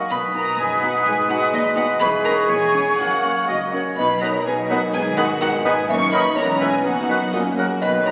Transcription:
Already playing: harp F#2 C#4 F#4 A#4, bassoon A#3, violin section F#4
0.11 double bass section B1, cello section B2, harp B2, violin section B4 B5, oboe B4, flute section D#6
0.28 harp D#4
0.35 viola section B3 D#4, violin section A#4 A#5
0.44 harp F#4
0.59 double bass section F#1, cello section F#2, violin section G#4 G#5, clarinet B4, harp D#5
0.75 harp F#4
0.82 viola section B3 D#4, violin section F#4 F#5
0.91 harp D#4
1.06 double bass section G#1, cello section G#2, harp G#2, bassoon G#3, violin section G#4 G#5
1.22 harp D#4
1.29 viola section B3 D#4, violin section F#4 F#5
1.38 harp G#4
1.53 double bass section D#2, cello section D#2, violin section D#4 D#5
1.70 harp G#4
1.76 viola section B3 D#4, violin section F#4 F#5
1.86 harp D#4
2.00 double bass section E1, cello section E2, harp E2, clarinet G#4, violin section B4 B5, oboe B4, flute section C#6
2.17 harp C#4
2.23 viola section G#3 C#4, violin section A#4 A#5
2.33 harp G#4
2.48 double bass section E1, cello section E2, harp E2, violin section G#4 G#5, oboe C#5
2.65 harp C#4
2.74 viola section G#3 C#4
2.82 harp G#4 C#5
2.98 double bass section F#1, cello section F#2, harp F#2, bassoon A#3, violin section F#4 F#5, clarinet A#4
3.16 harp C#4
3.24 viola section A#3 C#4
3.32 harp A#4
3.48 double bass section C#2, cello section C#2, violin section D#4 D#5, celesta F#4, harp C#5, oboe D#5
3.65 harp A#4
3.73 viola section A#3 C#4, violin section F#4 F#5, celesta A#4, oboe C#5
3.82 harp C#4
3.97 double bass section B1, harp B2, cello section B2, french horn section B3 D#4, viola section B3 D#4, violin section B4 B5, celesta D#5
4.14 harp F#3
4.21 bassoon F#3, viola section B3 D#4, clarinet D#4, violin section A#4 A#5, oboe B4, celesta C#5, flute section D#6
4.29 harp F#4
4.45 double bass section B1, cello section B2, viola section B3 D#4, violin section G#4 G#5, celesta B4, harp D#5
4.62 harp B4
4.69 bassoon F#3, viola section B3 D#4, clarinet D#4, violin section F#4 F#5, celesta A#4, oboe B4, flute section D#6
4.78 harp D#5
4.93 double bass section G#1, cello section G#2, harp G#2, viola section B3 D#4, violin section G#4 G#5, celesta B4
5.09 harp D#3
5.17 bassoon G#3, viola section B3 D#4, clarinet D#4, violin section F#4 F#5, celesta A#4, oboe B4, flute section D#6
5.25 harp G#4
5.41 double bass section G#1, cello section G#2, viola section B3 D#4, violin section F#4 F#5, celesta A#4, harp D#5
5.57 harp B4
5.64 bassoon G#3, viola section B3 D#4, clarinet D#4, violin section G#4 G#5, celesta B4, oboe B4, flute section D#6
5.73 harp D#5
5.88 double bass section F#1, harp F#2, cello section F#2, french horn section A#3 D#4, viola section A#3 D#4, violin section C#5 C#6, celesta E5
6.05 harp A#3
6.12 bassoon F#3, clarinet D#4, oboe A#4, violin section B4 B5, celesta D#5, flute section D#6
6.20 harp D#4
6.35 double bass section E1, harp E2, cello section E2, french horn section B3 C#4, viola section B3 C#4, violin section A#4 A#5, celesta C#5
6.52 harp B3
6.60 bassoon E3, clarinet C#4, violin section G#4 G#5, oboe B4, celesta B4, flute section E6
6.68 harp E4 C#5
6.83 double bass section F#1, harp F#2, cello section F#2, viola section B3 D#4, french horn section D#4, violin section F#4 F#5, celesta B4
7.09 bassoon D#3, clarinet F#4, oboe B4, flute section F#6
7.16 harp D#4 F#4
7.32 harp F#2, bassoon A#2, french horn section A#3 C#4, viola section A#3 C#4, violin section D#4 D#5, celesta F#4
7.49 harp A#3
7.57 bassoon C#3, violin section F#4 F#5, clarinet F#4, celesta A#4, oboe A#4, flute section F#6
7.65 harp C#4 F#4
7.81 double bass section B1, harp B2, cello section B2, bassoon D#3, french horn section B3 D#4, clarinet F#4, violin section B4 B5, oboe B4, celesta D#5, flute section F#6
7.97 harp F#3
8.04 viola section B3 D#4, violin section A#4 A#5, celesta C#5

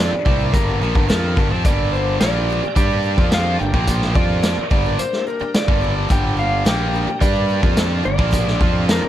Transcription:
Already playing: steel-string acoustic guitar G2, distorted electric guitar F3 C4 F4
0.00 steel-string acoustic guitar D3 G3 A#3 D4 G4, electric slide guitar D5
0.12 muted distorted electric guitar stroke, muted fingered electric bass stroke
0.25 fingered electric bass C2, distorted electric guitar C3 G3 C4, steel-string acoustic guitar G3 A#3 D4 G4, kick
0.40 steel-string acoustic guitar G3 A#3 D4 G4
0.53 fingered electric bass G1, distorted electric guitar G2 D3 G3, electric slide guitar A#4, kick, closed hi-hat
0.68 steel-string acoustic guitar G3 A#3 D4 G4
0.81 fingered electric bass A#1, distorted electric guitar A#2 F3, steel-string acoustic guitar G3 A#3 D4
0.85 steel-string acoustic guitar G4
0.94 fingered electric bass G1, distorted electric guitar G2 D3, steel-string acoustic guitar A#3 D4 G4, kick
0.98 steel-string acoustic guitar G3
1.07 fingered electric bass F2, steel-string acoustic guitar G2 D3 G3 A#3 D4 G4, distorted electric guitar F3 C4 F4, electric slide guitar A#4, snare, closed hi-hat
1.35 fingered electric bass G1, distorted electric guitar G2 D3, steel-string acoustic guitar G3 A#3 D4, kick
1.41 steel-string acoustic guitar G4
1.50 fingered electric bass F2, distorted electric guitar F3 C4
1.64 fingered electric bass G1, distorted electric guitar G2 D3 G3, steel-string acoustic guitar G2 D3 G3 A#3 D4, tonewheel organ D4 G4 A#4 D5, electric slide guitar D5, kick, closed hi-hat
1.68 steel-string acoustic guitar G4
1.93 steel-string acoustic guitar G3 A#3 D4 G4, electric slide guitar C5
2.20 fingered electric bass A#1, steel-string acoustic guitar G2 D3 G3 A#3 D4 G4, distorted electric guitar A#2 F3 A#3, electric slide guitar D5, snare, closed hi-hat
2.50 steel-string acoustic guitar G3 A#3 D4 G4
2.62 steel-string acoustic guitar G3 A#3 D4 G4, muted distorted electric guitar stroke, muted fingered electric bass stroke
2.75 fingered electric bass G2, distorted electric guitar G3 D4 G4, electric slide guitar D5, kick, closed hi-hat
2.90 steel-string acoustic guitar G3 A#3 D4 G4
3.03 steel-string acoustic guitar G3 A#3 D4 G4
3.17 fingered electric bass F2, distorted electric guitar F3 C4 F4, steel-string acoustic guitar D4 G4, kick
3.21 steel-string acoustic guitar G3 A#3
3.32 steel-string acoustic guitar G2 D3 G3 A#3 D4 G4, electric slide guitar F5, snare, closed hi-hat
3.59 fingered electric bass G1, distorted electric guitar G2 D3, steel-string acoustic guitar G3 A#3 D4 G4, electric slide guitar G5
3.74 fingered electric bass A#1, distorted electric guitar A#2 F3 A#3, kick
3.87 steel-string acoustic guitar G2 D3 G3 A#3 D4 G4, tonewheel organ D4 G4 A#4, kick, closed hi-hat
4.02 snare
4.14 fingered electric bass F2, distorted electric guitar F3 C4 F4, steel-string acoustic guitar G3 A#3 D4 G4, electric slide guitar D5, kick
4.42 steel-string acoustic guitar G2 D3 G3 A#3 D4 G4, snare, closed hi-hat
4.57 muted distorted electric guitar stroke, muted fingered electric bass stroke
4.70 fingered electric bass G1, distorted electric guitar G2 D3 G3, steel-string acoustic guitar G3 A#3 D4 G4, electric slide guitar D5, kick
4.84 steel-string acoustic guitar A#3 D4 G4
4.88 steel-string acoustic guitar G3
4.99 electric slide guitar C5, closed hi-hat
5.13 steel-string acoustic guitar G3 A#3 D4 G4, snare
5.27 steel-string acoustic guitar G3 A#3 D4 G4, electric slide guitar A#4
5.40 steel-string acoustic guitar G3 A#3 D4 G4, muted fingered electric bass stroke, muted distorted electric guitar stroke
5.54 steel-string acoustic guitar G2 D3 G3 A#3 D4 G4, electric slide guitar D5, snare, closed hi-hat
5.68 fingered electric bass G1, distorted electric guitar G2 D3 G3, kick
5.81 steel-string acoustic guitar G3 A#3 D4 G4
6.09 fingered electric bass G1, steel-string acoustic guitar G2 D3 G3 A#3 D4 G4, distorted electric guitar G2 D3 G3, tonewheel organ D4 G4 A#4, electric slide guitar G5, kick, closed hi-hat
6.37 steel-string acoustic guitar G3 A#3 D4 G4, electric slide guitar F5
6.65 fingered electric bass A#1, steel-string acoustic guitar G2 D3 G3 A#3 D4 G4, distorted electric guitar A#2 F3 A#3, electric slide guitar G5, snare, closed hi-hat
6.93 steel-string acoustic guitar G3 A#3 D4 G4
7.07 steel-string acoustic guitar G3 A#3 D4 G4, muted distorted electric guitar stroke, muted fingered electric bass stroke
7.20 fingered electric bass G2, distorted electric guitar G3 D4 G4, electric slide guitar D5, kick, closed hi-hat
7.34 steel-string acoustic guitar G3 A#3 D4 G4
7.49 steel-string acoustic guitar G3 A#3 D4 G4
7.63 fingered electric bass F2, distorted electric guitar F3 C4 F4, steel-string acoustic guitar G3 A#3 D4 G4, kick
7.76 steel-string acoustic guitar G2 D3 G3 A#3 D4 G4, snare, closed hi-hat
8.04 fingered electric bass G1, distorted electric guitar G2 D3, steel-string acoustic guitar G3 A#3 D4 G4, electric slide guitar D5
8.18 fingered electric bass A#1, distorted electric guitar A#2 F3 A#3, kick
8.31 steel-string acoustic guitar G2 D3 G3 A#3 D4 G4, tonewheel organ B3 D#4 G#4, kick, closed hi-hat
8.47 tonewheel organ A#3 D4 G4, snare
8.60 fingered electric bass F2, distorted electric guitar F3 C4 F4, steel-string acoustic guitar G3 A#3 G4, kick
8.89 steel-string acoustic guitar G2 D3 G3 A#3 D4 G4, electric slide guitar A#4, snare, closed hi-hat
9.02 muted distorted electric guitar stroke, muted fingered electric bass stroke

